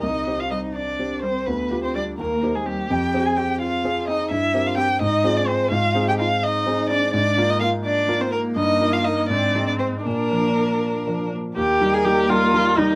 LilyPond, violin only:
\new Staff \with { instrumentName = "Violin" } { \time 6/8 \key c \minor \tempo 4. = 84 ees''8. f''16 ees''8 d''4 c''8 | b'8. c''16 d''8 bes'8. aes'16 g'8 | g''8. aes''16 g''8 f''4 ees''8 | e''8. f''16 g''8 ees''8. d''16 c''8 |
\key ees \major f''8. g''16 f''8 ees''4 d''8 | d''8. ees''16 f''8 d''8. c''16 bes'8 | ees''8. f''16 ees''8 d''8. d''16 c''8 | bes'2~ bes'8 r8 |
bes'2. | }